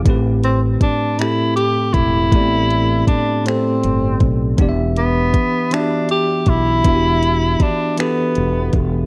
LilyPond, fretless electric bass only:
\new Staff \with { instrumentName = "Fretless electric bass" } { \clef bass \time 6/8 \key a \minor \tempo 4. = 53 a,,4 r4. e,,8 | a,,4 r4 g,,8 b,,8 | e,,4 r4. b,,8 | e,,4 r4 e,,8 e,,8 | }